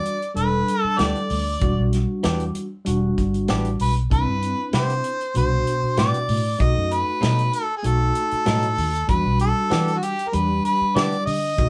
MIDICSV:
0, 0, Header, 1, 7, 480
1, 0, Start_track
1, 0, Key_signature, 1, "minor"
1, 0, Tempo, 623053
1, 1243, Time_signature, 4, 2, 24, 8
1, 9007, End_track
2, 0, Start_track
2, 0, Title_t, "Harmonica"
2, 0, Program_c, 0, 22
2, 0, Note_on_c, 0, 74, 86
2, 246, Note_off_c, 0, 74, 0
2, 286, Note_on_c, 0, 71, 83
2, 625, Note_off_c, 0, 71, 0
2, 625, Note_on_c, 0, 69, 83
2, 762, Note_on_c, 0, 74, 75
2, 774, Note_off_c, 0, 69, 0
2, 1483, Note_off_c, 0, 74, 0
2, 2942, Note_on_c, 0, 71, 78
2, 3046, Note_off_c, 0, 71, 0
2, 3180, Note_on_c, 0, 71, 87
2, 3622, Note_off_c, 0, 71, 0
2, 3665, Note_on_c, 0, 72, 80
2, 4104, Note_off_c, 0, 72, 0
2, 4142, Note_on_c, 0, 72, 93
2, 4582, Note_off_c, 0, 72, 0
2, 4615, Note_on_c, 0, 74, 89
2, 5059, Note_off_c, 0, 74, 0
2, 5090, Note_on_c, 0, 75, 94
2, 5339, Note_on_c, 0, 71, 92
2, 5350, Note_off_c, 0, 75, 0
2, 5809, Note_on_c, 0, 69, 85
2, 5821, Note_off_c, 0, 71, 0
2, 5985, Note_off_c, 0, 69, 0
2, 5989, Note_on_c, 0, 68, 66
2, 6057, Note_on_c, 0, 69, 91
2, 6069, Note_off_c, 0, 68, 0
2, 7000, Note_off_c, 0, 69, 0
2, 7005, Note_on_c, 0, 71, 90
2, 7228, Note_off_c, 0, 71, 0
2, 7249, Note_on_c, 0, 69, 94
2, 7686, Note_on_c, 0, 66, 58
2, 7698, Note_off_c, 0, 69, 0
2, 7734, Note_on_c, 0, 67, 83
2, 7745, Note_off_c, 0, 66, 0
2, 7923, Note_on_c, 0, 70, 64
2, 7935, Note_off_c, 0, 67, 0
2, 7968, Note_on_c, 0, 71, 88
2, 7980, Note_off_c, 0, 70, 0
2, 8202, Note_off_c, 0, 71, 0
2, 8207, Note_on_c, 0, 71, 89
2, 8442, Note_on_c, 0, 74, 90
2, 8454, Note_off_c, 0, 71, 0
2, 8674, Note_off_c, 0, 74, 0
2, 8679, Note_on_c, 0, 75, 91
2, 9007, Note_off_c, 0, 75, 0
2, 9007, End_track
3, 0, Start_track
3, 0, Title_t, "Tine electric piano"
3, 0, Program_c, 1, 4
3, 0, Note_on_c, 1, 55, 65
3, 0, Note_on_c, 1, 62, 62
3, 0, Note_on_c, 1, 66, 75
3, 121, Note_off_c, 1, 55, 0
3, 126, Note_off_c, 1, 62, 0
3, 129, Note_off_c, 1, 66, 0
3, 265, Note_on_c, 1, 55, 67
3, 274, Note_on_c, 1, 62, 61
3, 278, Note_on_c, 1, 69, 74
3, 1080, Note_off_c, 1, 55, 0
3, 1085, Note_off_c, 1, 62, 0
3, 1087, Note_off_c, 1, 69, 0
3, 1233, Note_on_c, 1, 55, 66
3, 1240, Note_on_c, 1, 62, 56
3, 1247, Note_on_c, 1, 66, 75
3, 2045, Note_off_c, 1, 55, 0
3, 2048, Note_off_c, 1, 62, 0
3, 2052, Note_off_c, 1, 66, 0
3, 2196, Note_on_c, 1, 55, 81
3, 2203, Note_on_c, 1, 62, 70
3, 2210, Note_on_c, 1, 66, 83
3, 3006, Note_off_c, 1, 55, 0
3, 3010, Note_off_c, 1, 62, 0
3, 3014, Note_off_c, 1, 66, 0
3, 3161, Note_on_c, 1, 60, 65
3, 3168, Note_on_c, 1, 62, 60
3, 3176, Note_on_c, 1, 64, 75
3, 3969, Note_off_c, 1, 60, 0
3, 3972, Note_off_c, 1, 62, 0
3, 3976, Note_off_c, 1, 64, 0
3, 4117, Note_on_c, 1, 47, 67
3, 4124, Note_on_c, 1, 62, 61
3, 4133, Note_on_c, 1, 66, 73
3, 4927, Note_off_c, 1, 47, 0
3, 4930, Note_off_c, 1, 62, 0
3, 4935, Note_off_c, 1, 66, 0
3, 5074, Note_on_c, 1, 57, 68
3, 5081, Note_on_c, 1, 63, 61
3, 5086, Note_on_c, 1, 66, 72
3, 5885, Note_off_c, 1, 57, 0
3, 5889, Note_off_c, 1, 63, 0
3, 5891, Note_off_c, 1, 66, 0
3, 6029, Note_on_c, 1, 57, 63
3, 6039, Note_on_c, 1, 63, 60
3, 6047, Note_on_c, 1, 66, 77
3, 6843, Note_off_c, 1, 57, 0
3, 6847, Note_off_c, 1, 63, 0
3, 6851, Note_off_c, 1, 66, 0
3, 6991, Note_on_c, 1, 55, 69
3, 7002, Note_on_c, 1, 62, 64
3, 7004, Note_on_c, 1, 66, 72
3, 7803, Note_off_c, 1, 55, 0
3, 7808, Note_off_c, 1, 62, 0
3, 7810, Note_off_c, 1, 66, 0
3, 7953, Note_on_c, 1, 55, 67
3, 7959, Note_on_c, 1, 62, 61
3, 7964, Note_on_c, 1, 67, 75
3, 8764, Note_off_c, 1, 55, 0
3, 8767, Note_off_c, 1, 62, 0
3, 8770, Note_off_c, 1, 67, 0
3, 8916, Note_on_c, 1, 57, 64
3, 8923, Note_on_c, 1, 63, 60
3, 8930, Note_on_c, 1, 66, 75
3, 9007, Note_off_c, 1, 57, 0
3, 9007, Note_off_c, 1, 63, 0
3, 9007, Note_off_c, 1, 66, 0
3, 9007, End_track
4, 0, Start_track
4, 0, Title_t, "Clean electric guitar"
4, 0, Program_c, 2, 27
4, 757, Note_on_c, 2, 52, 68
4, 763, Note_on_c, 2, 59, 71
4, 767, Note_on_c, 2, 62, 79
4, 771, Note_on_c, 2, 67, 77
4, 909, Note_off_c, 2, 52, 0
4, 912, Note_off_c, 2, 59, 0
4, 914, Note_off_c, 2, 62, 0
4, 916, Note_off_c, 2, 67, 0
4, 1722, Note_on_c, 2, 52, 79
4, 1728, Note_on_c, 2, 59, 80
4, 1730, Note_on_c, 2, 62, 82
4, 1735, Note_on_c, 2, 67, 89
4, 1872, Note_off_c, 2, 52, 0
4, 1875, Note_off_c, 2, 59, 0
4, 1876, Note_off_c, 2, 62, 0
4, 1878, Note_off_c, 2, 67, 0
4, 2688, Note_on_c, 2, 52, 81
4, 2692, Note_on_c, 2, 59, 90
4, 2696, Note_on_c, 2, 62, 87
4, 2697, Note_on_c, 2, 67, 90
4, 2835, Note_off_c, 2, 52, 0
4, 2837, Note_off_c, 2, 59, 0
4, 2839, Note_off_c, 2, 62, 0
4, 2840, Note_off_c, 2, 67, 0
4, 3646, Note_on_c, 2, 48, 71
4, 3652, Note_on_c, 2, 59, 73
4, 3654, Note_on_c, 2, 64, 73
4, 3660, Note_on_c, 2, 67, 70
4, 3794, Note_off_c, 2, 48, 0
4, 3797, Note_off_c, 2, 59, 0
4, 3798, Note_off_c, 2, 64, 0
4, 3801, Note_off_c, 2, 67, 0
4, 4603, Note_on_c, 2, 48, 68
4, 4606, Note_on_c, 2, 59, 75
4, 4610, Note_on_c, 2, 64, 73
4, 4614, Note_on_c, 2, 67, 85
4, 4753, Note_off_c, 2, 48, 0
4, 4754, Note_off_c, 2, 59, 0
4, 4756, Note_off_c, 2, 64, 0
4, 4758, Note_off_c, 2, 67, 0
4, 5555, Note_on_c, 2, 47, 66
4, 5561, Note_on_c, 2, 54, 68
4, 5563, Note_on_c, 2, 57, 77
4, 5567, Note_on_c, 2, 63, 73
4, 5708, Note_off_c, 2, 47, 0
4, 5711, Note_off_c, 2, 54, 0
4, 5713, Note_off_c, 2, 57, 0
4, 5714, Note_off_c, 2, 63, 0
4, 6517, Note_on_c, 2, 47, 76
4, 6523, Note_on_c, 2, 54, 76
4, 6525, Note_on_c, 2, 57, 77
4, 6532, Note_on_c, 2, 63, 79
4, 6669, Note_off_c, 2, 47, 0
4, 6672, Note_off_c, 2, 54, 0
4, 6673, Note_off_c, 2, 57, 0
4, 6677, Note_off_c, 2, 63, 0
4, 7475, Note_on_c, 2, 52, 67
4, 7481, Note_on_c, 2, 59, 72
4, 7484, Note_on_c, 2, 62, 73
4, 7490, Note_on_c, 2, 67, 80
4, 7628, Note_off_c, 2, 52, 0
4, 7631, Note_off_c, 2, 59, 0
4, 7633, Note_off_c, 2, 62, 0
4, 7635, Note_off_c, 2, 67, 0
4, 8440, Note_on_c, 2, 52, 71
4, 8447, Note_on_c, 2, 59, 75
4, 8449, Note_on_c, 2, 62, 83
4, 8452, Note_on_c, 2, 67, 81
4, 8590, Note_off_c, 2, 52, 0
4, 8594, Note_off_c, 2, 59, 0
4, 8595, Note_off_c, 2, 62, 0
4, 8596, Note_off_c, 2, 67, 0
4, 9007, End_track
5, 0, Start_track
5, 0, Title_t, "Fingered electric bass"
5, 0, Program_c, 3, 33
5, 278, Note_on_c, 3, 28, 80
5, 480, Note_off_c, 3, 28, 0
5, 768, Note_on_c, 3, 38, 84
5, 871, Note_off_c, 3, 38, 0
5, 1006, Note_on_c, 3, 38, 83
5, 1205, Note_off_c, 3, 38, 0
5, 1245, Note_on_c, 3, 28, 85
5, 1350, Note_off_c, 3, 28, 0
5, 1378, Note_on_c, 3, 35, 79
5, 1574, Note_off_c, 3, 35, 0
5, 1734, Note_on_c, 3, 40, 88
5, 1930, Note_off_c, 3, 40, 0
5, 2214, Note_on_c, 3, 28, 86
5, 2410, Note_off_c, 3, 28, 0
5, 2452, Note_on_c, 3, 31, 78
5, 2665, Note_off_c, 3, 31, 0
5, 2696, Note_on_c, 3, 33, 75
5, 2907, Note_off_c, 3, 33, 0
5, 2932, Note_on_c, 3, 35, 73
5, 3145, Note_off_c, 3, 35, 0
5, 3171, Note_on_c, 3, 36, 92
5, 3273, Note_off_c, 3, 36, 0
5, 3298, Note_on_c, 3, 43, 72
5, 3495, Note_off_c, 3, 43, 0
5, 3648, Note_on_c, 3, 48, 88
5, 3846, Note_off_c, 3, 48, 0
5, 4131, Note_on_c, 3, 36, 85
5, 4328, Note_off_c, 3, 36, 0
5, 4607, Note_on_c, 3, 45, 83
5, 4711, Note_off_c, 3, 45, 0
5, 4847, Note_on_c, 3, 45, 83
5, 5046, Note_off_c, 3, 45, 0
5, 5089, Note_on_c, 3, 35, 87
5, 5192, Note_off_c, 3, 35, 0
5, 5219, Note_on_c, 3, 42, 73
5, 5415, Note_off_c, 3, 42, 0
5, 5572, Note_on_c, 3, 47, 89
5, 5769, Note_off_c, 3, 47, 0
5, 6045, Note_on_c, 3, 35, 82
5, 6244, Note_off_c, 3, 35, 0
5, 6527, Note_on_c, 3, 45, 85
5, 6764, Note_on_c, 3, 39, 89
5, 6775, Note_off_c, 3, 45, 0
5, 6963, Note_off_c, 3, 39, 0
5, 7004, Note_on_c, 3, 40, 93
5, 7109, Note_off_c, 3, 40, 0
5, 7132, Note_on_c, 3, 35, 78
5, 7330, Note_off_c, 3, 35, 0
5, 7487, Note_on_c, 3, 52, 92
5, 7685, Note_off_c, 3, 52, 0
5, 7965, Note_on_c, 3, 40, 89
5, 8164, Note_off_c, 3, 40, 0
5, 8443, Note_on_c, 3, 50, 90
5, 8548, Note_off_c, 3, 50, 0
5, 8683, Note_on_c, 3, 50, 86
5, 8883, Note_off_c, 3, 50, 0
5, 8923, Note_on_c, 3, 35, 94
5, 9007, Note_off_c, 3, 35, 0
5, 9007, End_track
6, 0, Start_track
6, 0, Title_t, "Muted fingered electric bass strokes"
6, 650, Note_on_c, 9, 29, 36
6, 727, Note_off_c, 9, 29, 0
6, 4491, Note_on_c, 9, 29, 33
6, 4568, Note_off_c, 9, 29, 0
6, 6413, Note_on_c, 9, 29, 34
6, 6490, Note_off_c, 9, 29, 0
6, 8330, Note_on_c, 9, 29, 38
6, 8408, Note_off_c, 9, 29, 0
6, 9007, End_track
7, 0, Start_track
7, 0, Title_t, "Drums"
7, 43, Note_on_c, 9, 42, 57
7, 120, Note_off_c, 9, 42, 0
7, 171, Note_on_c, 9, 42, 36
7, 248, Note_off_c, 9, 42, 0
7, 281, Note_on_c, 9, 42, 73
7, 358, Note_off_c, 9, 42, 0
7, 526, Note_on_c, 9, 42, 57
7, 603, Note_off_c, 9, 42, 0
7, 763, Note_on_c, 9, 42, 78
7, 766, Note_on_c, 9, 38, 98
7, 840, Note_off_c, 9, 42, 0
7, 843, Note_off_c, 9, 38, 0
7, 889, Note_on_c, 9, 42, 37
7, 966, Note_off_c, 9, 42, 0
7, 1001, Note_on_c, 9, 46, 77
7, 1078, Note_off_c, 9, 46, 0
7, 1241, Note_on_c, 9, 42, 75
7, 1245, Note_on_c, 9, 36, 95
7, 1319, Note_off_c, 9, 42, 0
7, 1322, Note_off_c, 9, 36, 0
7, 1484, Note_on_c, 9, 42, 61
7, 1488, Note_on_c, 9, 38, 31
7, 1562, Note_off_c, 9, 42, 0
7, 1565, Note_off_c, 9, 38, 0
7, 1722, Note_on_c, 9, 42, 82
7, 1726, Note_on_c, 9, 38, 103
7, 1799, Note_off_c, 9, 42, 0
7, 1803, Note_off_c, 9, 38, 0
7, 1847, Note_on_c, 9, 42, 39
7, 1924, Note_off_c, 9, 42, 0
7, 1964, Note_on_c, 9, 42, 65
7, 2041, Note_off_c, 9, 42, 0
7, 2203, Note_on_c, 9, 42, 83
7, 2280, Note_off_c, 9, 42, 0
7, 2449, Note_on_c, 9, 42, 58
7, 2450, Note_on_c, 9, 36, 68
7, 2526, Note_off_c, 9, 42, 0
7, 2527, Note_off_c, 9, 36, 0
7, 2574, Note_on_c, 9, 42, 35
7, 2651, Note_off_c, 9, 42, 0
7, 2682, Note_on_c, 9, 42, 77
7, 2686, Note_on_c, 9, 38, 102
7, 2759, Note_off_c, 9, 42, 0
7, 2763, Note_off_c, 9, 38, 0
7, 2810, Note_on_c, 9, 42, 37
7, 2887, Note_off_c, 9, 42, 0
7, 2923, Note_on_c, 9, 46, 69
7, 3000, Note_off_c, 9, 46, 0
7, 3057, Note_on_c, 9, 42, 35
7, 3134, Note_off_c, 9, 42, 0
7, 3169, Note_on_c, 9, 42, 72
7, 3170, Note_on_c, 9, 36, 97
7, 3246, Note_off_c, 9, 42, 0
7, 3247, Note_off_c, 9, 36, 0
7, 3409, Note_on_c, 9, 42, 54
7, 3486, Note_off_c, 9, 42, 0
7, 3643, Note_on_c, 9, 42, 74
7, 3647, Note_on_c, 9, 38, 101
7, 3720, Note_off_c, 9, 42, 0
7, 3724, Note_off_c, 9, 38, 0
7, 3772, Note_on_c, 9, 42, 34
7, 3849, Note_off_c, 9, 42, 0
7, 3882, Note_on_c, 9, 42, 58
7, 3959, Note_off_c, 9, 42, 0
7, 4011, Note_on_c, 9, 42, 37
7, 4088, Note_off_c, 9, 42, 0
7, 4120, Note_on_c, 9, 42, 75
7, 4197, Note_off_c, 9, 42, 0
7, 4368, Note_on_c, 9, 42, 54
7, 4445, Note_off_c, 9, 42, 0
7, 4601, Note_on_c, 9, 42, 75
7, 4605, Note_on_c, 9, 38, 99
7, 4678, Note_off_c, 9, 42, 0
7, 4682, Note_off_c, 9, 38, 0
7, 4732, Note_on_c, 9, 42, 38
7, 4809, Note_off_c, 9, 42, 0
7, 4844, Note_on_c, 9, 46, 74
7, 4921, Note_off_c, 9, 46, 0
7, 5086, Note_on_c, 9, 36, 100
7, 5086, Note_on_c, 9, 42, 75
7, 5163, Note_off_c, 9, 36, 0
7, 5163, Note_off_c, 9, 42, 0
7, 5326, Note_on_c, 9, 42, 59
7, 5403, Note_off_c, 9, 42, 0
7, 5567, Note_on_c, 9, 42, 80
7, 5571, Note_on_c, 9, 38, 99
7, 5644, Note_off_c, 9, 42, 0
7, 5648, Note_off_c, 9, 38, 0
7, 5691, Note_on_c, 9, 42, 39
7, 5768, Note_off_c, 9, 42, 0
7, 5803, Note_on_c, 9, 42, 66
7, 5880, Note_off_c, 9, 42, 0
7, 6041, Note_on_c, 9, 42, 84
7, 6118, Note_off_c, 9, 42, 0
7, 6280, Note_on_c, 9, 42, 60
7, 6357, Note_off_c, 9, 42, 0
7, 6405, Note_on_c, 9, 42, 37
7, 6482, Note_off_c, 9, 42, 0
7, 6518, Note_on_c, 9, 42, 86
7, 6521, Note_on_c, 9, 38, 100
7, 6595, Note_off_c, 9, 42, 0
7, 6598, Note_off_c, 9, 38, 0
7, 6645, Note_on_c, 9, 42, 38
7, 6722, Note_off_c, 9, 42, 0
7, 6766, Note_on_c, 9, 46, 73
7, 6843, Note_off_c, 9, 46, 0
7, 6893, Note_on_c, 9, 42, 37
7, 6970, Note_off_c, 9, 42, 0
7, 7000, Note_on_c, 9, 42, 83
7, 7002, Note_on_c, 9, 36, 102
7, 7078, Note_off_c, 9, 42, 0
7, 7079, Note_off_c, 9, 36, 0
7, 7237, Note_on_c, 9, 42, 58
7, 7314, Note_off_c, 9, 42, 0
7, 7482, Note_on_c, 9, 42, 80
7, 7486, Note_on_c, 9, 38, 100
7, 7559, Note_off_c, 9, 42, 0
7, 7563, Note_off_c, 9, 38, 0
7, 7612, Note_on_c, 9, 42, 36
7, 7689, Note_off_c, 9, 42, 0
7, 7724, Note_on_c, 9, 42, 61
7, 7801, Note_off_c, 9, 42, 0
7, 7850, Note_on_c, 9, 42, 37
7, 7927, Note_off_c, 9, 42, 0
7, 7960, Note_on_c, 9, 42, 75
7, 8037, Note_off_c, 9, 42, 0
7, 8204, Note_on_c, 9, 42, 57
7, 8281, Note_off_c, 9, 42, 0
7, 8446, Note_on_c, 9, 42, 72
7, 8450, Note_on_c, 9, 38, 101
7, 8523, Note_off_c, 9, 42, 0
7, 8527, Note_off_c, 9, 38, 0
7, 8568, Note_on_c, 9, 42, 34
7, 8645, Note_off_c, 9, 42, 0
7, 8683, Note_on_c, 9, 46, 73
7, 8761, Note_off_c, 9, 46, 0
7, 8923, Note_on_c, 9, 42, 73
7, 8925, Note_on_c, 9, 36, 103
7, 9000, Note_off_c, 9, 42, 0
7, 9002, Note_off_c, 9, 36, 0
7, 9007, End_track
0, 0, End_of_file